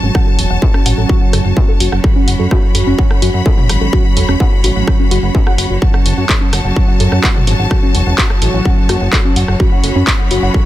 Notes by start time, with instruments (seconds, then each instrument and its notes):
Already playing: analog synth pad F#3 C#4 F#4, string section F#4 C#5 A5
0.03 analog synth bass G#1, synth pluck C#4
0.15 analog synth pad F#3 C#4 F#4, synth pluck F#5, kick, cross-stick
0.27 synth pluck A4
0.38 analog synth bass E1, synth pluck F#4, open hi-hat
0.50 analog synth bass E1, synth pluck F#5
0.62 synth pluck A4, kick
0.74 synth pluck C#4, cross-stick
0.86 analog synth bass A1, analog synth pad F#3 C#4 F#4, synth pluck F#5, open hi-hat
0.98 analog synth bass A1, synth pluck A4
1.09 synth pluck F#4, kick
1.21 synth pluck F#5
1.33 analog synth bass F#1, synth pluck A4, cross-stick, open hi-hat
1.45 analog synth bass F#1, synth pluck C#4
1.57 synth pluck F#5, kick
1.69 synth pluck A4
1.80 analog synth bass F#1, synth pluck F#4, open hi-hat
1.92 analog synth bass F#1, synth pluck F#5, cross-stick
2.04 analog synth pad F#3 C#4 F#4, synth pluck A4, string section B5, kick
2.16 synth pluck C#4
2.27 analog synth bass F#1, synth pluck F#5, open hi-hat
2.39 analog synth bass F#2, synth pluck A4
2.51 synth pluck F#4, kick, cross-stick
2.63 synth pluck F#5
2.75 analog synth bass F#1, analog synth pad F#3 C#4 F#4, synth pluck A4, open hi-hat
2.87 analog synth bass F#1, synth pluck C#4
2.98 synth pluck F#5, kick
3.10 synth pluck A4, cross-stick
3.22 analog synth bass F#2, synth pluck F#4, open hi-hat
3.34 analog synth bass F#2, synth pluck F#5
3.46 synth pluck A4, kick
3.58 synth pluck C#4, mid tom
3.69 analog synth bass G#1, synth pluck F#5, cross-stick, open hi-hat
3.81 analog synth bass G#1, synth pluck A4
3.93 analog synth pad F#3 C#4 F#4, synth pluck F#4, kick
4.05 synth pluck F#5
4.17 analog synth bass E1, synth pluck A4, open hi-hat
4.29 analog synth bass E1, synth pluck C#4, cross-stick
4.40 synth pluck F#5, kick
4.52 synth pluck A4
4.64 analog synth bass A1, analog synth pad F#3 C#4 F#4, synth pluck F#4, open hi-hat
4.76 analog synth bass A1, synth pluck F#5
4.87 synth pluck A4, kick, cross-stick
5.00 synth pluck C#4
5.11 analog synth bass F#1, synth pluck F#4, open hi-hat
5.23 analog synth bass F#1, synth pluck F#5
5.35 synth pluck F#4, kick
5.47 synth pluck F#5, cross-stick
5.58 analog synth bass F#1, synth pluck F#5, open hi-hat
5.70 analog synth bass F#1, synth pluck F#4
5.82 analog synth pad F#3 C#4 F#4, synth pluck F#5, string section A5, kick
5.94 synth pluck F#5, cross-stick
6.06 analog synth bass F#1, synth pluck F#4, open hi-hat
6.18 analog synth bass F#2, synth pluck F#5
6.29 synth pluck A4, kick, clap
6.41 synth pluck C#4
6.53 analog synth bass F#1, analog synth pad F#3 C#4 F#4, synth pluck F#5, cross-stick, open hi-hat
6.65 analog synth bass F#1, synth pluck F#5
6.76 synth pluck F#4, kick
6.88 synth pluck F#5
7.00 analog synth bass F#2, synth pluck A4, open hi-hat
7.12 analog synth bass F#2, synth pluck C#4, cross-stick
7.24 synth pluck F#5, kick, clap
7.36 synth pluck F#5, mid tom
7.47 analog synth bass G#1, synth pluck F#4, open hi-hat
7.59 analog synth bass G#1, synth pluck F#5
7.71 analog synth pad F#3 C#4 F#4, synth pluck A4, kick, cross-stick
7.83 synth pluck C#4
7.95 analog synth bass E1, synth pluck F#5, open hi-hat
8.07 analog synth bass E1, synth pluck F#5
8.18 synth pluck F#4, kick, clap
8.30 synth pluck F#5, cross-stick
8.42 analog synth bass A1, analog synth pad F#3 C#4 F#4, synth pluck A4, open hi-hat
8.54 analog synth bass A1, synth pluck C#4
8.65 synth pluck F#5, kick
8.78 synth pluck F#5
8.89 analog synth bass F#1, synth pluck F#4, cross-stick, open hi-hat
9.01 analog synth bass F#1, synth pluck F#5
9.13 synth pluck A4, kick, clap
9.25 synth pluck C#4
9.36 analog synth bass F#1, synth pluck F#5, open hi-hat
9.48 analog synth bass F#1, synth pluck F#5, cross-stick
9.60 analog synth pad F#3 C#4 F#4, synth pluck F#4, string section B5, kick
9.72 synth pluck F#5
9.84 analog synth bass F#1, synth pluck A4, open hi-hat
9.95 analog synth bass F#2, synth pluck C#4
10.07 synth pluck F#5, kick, cross-stick, clap
10.19 synth pluck F#5
10.31 analog synth bass F#1, analog synth pad F#3 C#4 F#4, synth pluck F#4, open hi-hat
10.43 analog synth bass F#1, synth pluck F#5
10.54 synth pluck A4, kick